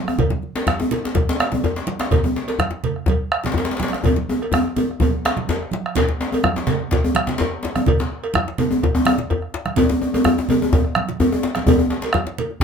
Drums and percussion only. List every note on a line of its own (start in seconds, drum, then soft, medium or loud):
0.07 bombo rim medium
0.07 high conga soft
0.07 djembe tone medium
0.18 bombo rim soft
0.18 bombo low medium
0.18 cowbell medium
0.18 djembe tone medium
0.18 low conga medium
0.18 djembe bass medium
0.30 djembe slap medium
0.30 high conga medium
0.42 djembe slap soft
0.42 high conga soft
0.55 cowbell soft
0.55 djembe slap soft
0.55 djembe slap loud
0.67 bombo rim medium
0.67 djembe slap medium
0.67 djembe tone medium
0.67 high conga medium
0.67 djembe bass medium
0.80 djembe slap medium
0.80 djembe tone medium
0.91 cowbell soft
0.91 djembe slap medium
0.91 high conga soft
0.91 low conga medium
1.04 bombo rim soft
1.04 djembe slap medium
1.15 bombo low loud
1.15 cowbell soft
1.15 djembe slap medium
1.15 high conga medium
1.15 djembe tone medium
1.15 djembe bass medium
1.29 djembe slap loud
1.40 bombo rim loud
1.40 djembe slap medium
1.52 djembe slap medium
1.52 high conga medium
1.52 djembe tone medium
1.52 low conga medium
1.63 cowbell medium
1.63 djembe slap soft
1.63 djembe slap medium
1.63 high conga soft
1.63 djembe tone medium
1.63 djembe bass medium
1.76 djembe slap medium
1.76 djembe slap soft
1.87 djembe slap medium
1.87 high conga medium
2.00 bombo rim medium
2.00 djembe slap loud
2.00 high conga soft
2.11 bombo rim soft
2.11 bombo low loud
2.11 cowbell medium
2.11 djembe slap medium
2.11 djembe tone medium
2.11 djembe bass medium
2.11 low conga medium
2.24 djembe slap medium
2.24 djembe tone medium
2.24 high conga medium
2.35 djembe slap soft
2.35 djembe slap medium
2.35 high conga soft
2.48 cowbell medium
2.48 djembe slap soft
2.48 djembe slap medium
2.59 bombo rim medium
2.59 djembe tone medium
2.59 high conga medium
2.59 djembe bass medium
2.71 djembe slap medium
2.84 cowbell soft
2.84 high conga soft
2.84 low conga medium
2.96 bombo rim soft
3.06 bombo low medium
3.06 cowbell medium
3.06 djembe slap medium
3.06 djembe tone medium
3.06 high conga medium
3.06 djembe bass medium
3.32 bombo rim loud
3.44 djembe slap medium
3.44 high conga medium
3.44 low conga medium
3.46 djembe slap medium
3.52 djembe slap medium
3.54 cowbell soft
3.54 djembe slap soft
3.54 djembe tone medium
3.54 high conga soft
3.54 djembe bass medium
3.58 djembe slap medium
3.65 djembe slap medium
3.67 djembe slap soft
3.71 djembe slap medium
3.77 djembe slap medium
3.80 djembe slap medium
3.80 high conga medium
3.83 djembe slap loud
3.88 djembe slap medium
3.93 bombo rim medium
3.93 djembe slap medium
3.93 high conga soft
4.04 bombo rim soft
4.04 bombo low medium
4.04 djembe tone medium
4.04 djembe bass medium
4.04 low conga medium
4.05 cowbell medium
4.05 djembe tone loud
4.16 djembe slap medium
4.16 high conga medium
4.29 bombo rim soft
4.29 djembe tone loud
4.41 bombo rim soft
4.41 cowbell soft
4.41 djembe slap soft
4.52 bombo rim medium
4.52 djembe tone medium
4.52 high conga medium
4.52 djembe bass medium
4.54 djembe tone loud
4.66 bombo rim soft
4.66 high conga soft
4.76 cowbell medium
4.76 djembe tone medium
4.76 low conga medium
4.88 bombo rim soft
4.88 djembe slap soft
4.88 high conga soft
5.00 bombo low loud
5.00 cowbell soft
5.00 djembe slap medium
5.00 high conga medium
5.00 djembe tone medium
5.00 djembe tone loud
5.00 djembe bass medium
5.13 djembe slap soft
5.25 bombo rim loud
5.25 djembe slap loud
5.37 djembe slap medium
5.37 high conga medium
5.37 low conga medium
5.48 cowbell medium
5.48 djembe slap loud
5.48 high conga soft
5.48 djembe tone medium
5.48 djembe bass medium
5.61 bombo rim soft
5.61 high conga soft
5.71 djembe slap medium
5.71 high conga medium
5.86 bombo rim medium
5.95 bombo rim soft
5.95 bombo low loud
5.95 cowbell medium
5.95 djembe slap loud
5.95 djembe slap soft
5.95 djembe tone medium
5.95 low conga medium
5.95 djembe bass medium
6.08 djembe slap medium
6.08 high conga soft
6.21 djembe slap soft
6.21 djembe slap medium
6.32 bombo rim soft
6.32 cowbell medium
6.32 djembe tone medium
6.44 bombo rim loud
6.44 high conga medium
6.44 djembe tone medium
6.44 djembe bass medium
6.56 djembe slap medium
6.58 djembe slap medium
6.67 cowbell medium
6.67 djembe slap loud
6.67 low conga medium
6.80 high conga soft
6.91 bombo rim soft
6.91 bombo low loud
6.91 cowbell medium
6.91 djembe slap medium
6.91 djembe tone medium
6.91 djembe bass medium
7.04 bombo rim soft
7.04 djembe tone medium
7.15 bombo rim loud
7.15 high conga medium
7.27 djembe slap medium
7.27 low conga medium
7.29 djembe slap medium
7.38 bombo rim soft
7.38 cowbell medium
7.38 djembe slap loud
7.38 djembe tone medium
7.38 djembe bass medium
7.63 bombo rim soft
7.63 djembe slap medium
7.65 djembe slap medium
7.76 bombo rim medium
7.76 djembe tone medium
7.76 high conga medium
7.86 bombo rim soft
7.86 bombo low loud
7.86 cowbell medium
7.86 djembe slap soft
7.86 djembe tone medium
7.86 low conga medium
7.86 djembe bass medium
7.99 djembe slap medium
7.99 high conga soft
8.12 djembe slap soft
8.24 bombo rim soft
8.24 cowbell medium
8.34 bombo rim loud
8.34 high conga medium
8.34 djembe tone medium
8.34 djembe bass medium
8.48 djembe slap medium
8.58 cowbell medium
8.58 djembe tone loud
8.58 low conga medium
8.71 high conga soft
8.71 djembe tone medium
8.83 bombo rim soft
8.83 bombo low loud
8.83 cowbell soft
8.83 djembe slap medium
8.83 djembe tone medium
8.83 djembe bass medium
8.95 bombo rim soft
8.95 djembe tone loud
9.05 bombo rim loud
9.05 high conga medium
9.05 djembe tone medium
9.18 djembe slap medium
9.18 low conga medium
9.30 bombo rim soft
9.30 cowbell medium
9.30 djembe tone medium
9.30 djembe bass medium
9.42 bombo rim soft
9.54 bombo rim soft
9.54 djembe slap medium
9.66 bombo rim medium
9.66 high conga medium
9.76 bombo rim soft
9.76 bombo low loud
9.76 cowbell medium
9.76 djembe slap soft
9.76 djembe tone loud
9.76 djembe tone medium
9.76 low conga medium
9.76 djembe bass medium
9.89 djembe slap medium
9.89 high conga soft
9.89 djembe tone medium
10.01 djembe slap soft
10.01 djembe tone medium
10.14 bombo rim soft
10.14 cowbell soft
10.14 djembe tone loud
10.24 bombo rim loud
10.24 high conga medium
10.24 djembe tone medium
10.24 djembe bass medium
10.38 djembe slap medium
10.38 djembe tone medium
10.49 cowbell soft
10.49 djembe tone loud
10.49 low conga medium
10.60 high conga soft
10.60 djembe tone medium
10.73 bombo rim soft
10.73 bombo low loud
10.73 cowbell medium
10.73 djembe slap medium
10.73 djembe tone medium
10.73 djembe bass medium
10.84 bombo rim soft
10.95 bombo rim loud
10.95 high conga medium
11.09 djembe slap medium
11.09 low conga medium
11.20 bombo rim soft
11.20 cowbell soft
11.20 djembe tone loud
11.20 djembe tone medium
11.20 djembe bass medium
11.32 bombo rim soft
11.32 djembe tone medium
11.43 bombo rim soft
11.43 djembe slap medium
11.55 bombo rim medium
11.55 djembe slap medium
11.55 high conga medium
11.66 bombo low loud
11.66 cowbell medium
11.66 djembe tone loud
11.66 djembe tone medium
11.66 djembe bass medium
11.66 low conga medium
11.79 bombo rim soft
11.79 djembe tone medium
11.90 bombo rim soft
11.90 djembe slap medium
11.90 high conga soft
12.02 cowbell soft
12.02 djembe slap medium
12.13 bombo rim loud
12.13 high conga medium
12.13 djembe tone medium
12.13 djembe bass medium
12.27 djembe slap medium
12.38 cowbell medium
12.38 djembe slap soft
12.38 low conga medium
12.51 djembe slap soft
12.60 bombo low loud